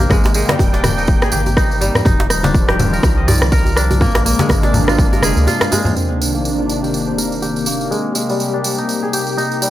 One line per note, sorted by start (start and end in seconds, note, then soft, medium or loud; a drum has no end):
0.00 3.97 C3 medium
0.00 1.79 A#3 medium
0.00 2.02 A#3 medium
0.00 0.20 C4 medium
0.00 0.29 F4 medium
0.00 0.17 G4 medium
0.00 0.65 A#4 medium
0.00 0.46 C5 medium
0.00 tambourine soft
0.00 djembe tone medium
0.10 0.44 G#1 medium
0.10 0.34 G#3 medium
0.10 2.04 G5 medium
0.10 kick loud
0.10 cross-stick medium
0.10 tambourine soft
0.10 low conga loud
0.24 tambourine soft
0.24 djembe slap loud
0.24 djembe tone medium
0.34 2.11 G#3 medium
0.34 tambourine medium
0.49 1.80 G3 medium
0.49 cross-stick medium
0.49 tambourine soft
0.49 djembe slap loud
0.49 high conga medium
0.59 1.17 D#1 medium
0.59 kick loud
0.59 tambourine soft
0.59 djembe tone medium
0.59 djembe bass medium
0.73 1.04 D4 medium
0.73 tambourine soft
0.73 djembe slap medium
0.84 cross-stick medium
0.84 tambourine medium
0.84 djembe tone medium
0.84 high conga medium
0.84 low conga loud
0.98 1.56 D#4 medium
0.98 tambourine soft
1.07 kick loud
1.07 tambourine soft
1.07 high conga medium
1.22 1.38 G#4 medium
1.22 cross-stick medium
1.22 tambourine soft
1.22 djembe tone medium
1.32 1.90 G#1 medium
1.32 2.68 G4 medium
1.32 tambourine medium
1.32 high conga medium
1.46 tambourine soft
1.46 djembe tone medium
1.57 2.05 D#4 loud
1.57 kick loud
1.57 cross-stick medium
1.57 tambourine soft
1.71 tambourine soft
1.81 2.11 G3 medium
1.81 tambourine medium
1.81 djembe tone medium
1.95 cross-stick medium
1.95 tambourine soft
1.95 low conga medium
2.05 2.99 D#1 medium
2.05 3.99 D#3 medium
2.05 3.99 F3 medium
2.05 3.99 G3 medium
2.05 2.29 D#4 loud
2.05 kick loud
2.05 tambourine soft
2.05 djembe tone medium
2.05 low conga medium
2.20 djembe slap loud
2.30 2.50 D#4 medium
2.30 cross-stick medium
2.30 tambourine medium
2.43 3.23 D4 medium
2.43 tambourine soft
2.43 djembe slap medium
2.43 djembe tone medium
2.43 high conga loud
2.54 kick loud
2.54 tambourine soft
2.68 4.09 G4 medium
2.68 cross-stick medium
2.68 djembe tone medium
2.79 tambourine medium
2.79 high conga medium
2.79 low conga loud
2.93 3.52 A#4 medium
2.93 tambourine soft
3.03 4.02 C2 medium
3.03 kick loud
3.03 cross-stick medium
3.03 tambourine soft
3.03 djembe tone medium
3.17 3.34 D#5 medium
3.28 4.38 D5 medium
3.28 tambourine medium
3.28 djembe slap medium
3.28 djembe tone medium
3.28 djembe bass medium
3.42 cross-stick medium
3.42 tambourine soft
3.42 high conga medium
3.52 4.79 A#4 loud
3.52 kick loud
3.52 tambourine medium
3.65 tambourine soft
3.65 djembe tone medium
3.76 4.63 D4 medium
3.76 cross-stick medium
3.76 tambourine medium
3.91 tambourine soft
3.91 djembe tone medium
3.91 high conga medium
4.01 4.34 A#1 loud
4.01 5.94 C3 medium
4.01 5.94 G#3 medium
4.01 4.25 A#3 loud
4.01 5.94 A#3 medium
4.01 5.94 D4 medium
4.01 kick loud
4.01 tambourine soft
4.01 low conga loud
4.15 cross-stick medium
4.15 tambourine soft
4.15 djembe slap loud
4.25 6.18 A#3 medium
4.25 tambourine medium
4.25 djembe tone medium
4.39 5.70 G#3 medium
4.39 tambourine soft
4.39 djembe slap loud
4.39 high conga loud
4.49 5.07 G#1 loud
4.49 kick medium
4.49 cross-stick medium
4.49 tambourine medium
4.49 djembe tone medium
4.49 djembe bass medium
4.63 6.32 D4 medium
4.63 tambourine soft
4.63 djembe slap medium
4.74 tambourine medium
4.74 high conga medium
4.74 low conga loud
4.88 5.47 F4 medium
4.88 cross-stick medium
4.88 tambourine soft
4.88 djembe tone medium
4.99 kick loud
4.99 tambourine medium
4.99 high conga medium
5.13 6.40 A#4 medium
5.13 tambourine soft
5.13 djembe tone medium
5.22 5.34 F1 medium
5.22 6.59 G#4 medium
5.22 cross-stick medium
5.22 tambourine medium
5.22 high conga medium
5.36 5.47 D2 loud
5.36 tambourine soft
5.47 6.58 F4 medium
5.47 tambourine medium
5.47 djembe tone medium
5.61 cross-stick medium
5.61 tambourine soft
5.61 djembe slap medium
5.72 6.01 G#3 medium
5.72 tambourine medium
5.72 djembe tone medium
5.85 tambourine soft
5.85 low conga medium
5.96 7.89 C3 medium
5.96 7.89 D#3 medium
5.96 9.70 A#3 medium
5.96 6.20 C4 medium
5.96 7.89 D4 medium
5.96 tambourine soft
5.96 sub drop medium
6.21 8.01 C4 medium
6.21 tambourine medium
6.34 7.66 A#3 medium
6.34 tambourine soft
6.45 tambourine medium
6.59 8.10 F4 medium
6.69 tambourine medium
6.83 7.42 G4 medium
6.83 tambourine soft
6.94 tambourine soft
7.07 8.26 C5 medium
7.18 8.45 A#4 medium
7.18 tambourine medium
7.32 tambourine soft
7.42 7.97 G4 medium
7.42 tambourine soft
7.56 tambourine soft
7.66 9.59 A#3 medium
7.66 tambourine medium
7.81 tambourine soft
7.91 9.70 C3 medium
7.91 8.14 G#3 medium
7.91 9.70 G4 medium
7.91 tambourine soft
8.15 9.70 G#3 medium
8.15 tambourine medium
8.29 9.61 G3 medium
8.29 tambourine soft
8.40 tambourine medium
8.54 8.84 D4 medium
8.64 tambourine medium
8.78 9.37 D#4 medium
8.78 tambourine soft
8.89 tambourine medium
9.03 9.19 G#4 medium
9.13 9.70 G4 medium
9.13 tambourine medium
9.27 tambourine soft
9.37 9.70 D#4 medium
9.37 tambourine medium
9.52 tambourine soft
9.62 9.70 G3 medium
9.62 tambourine medium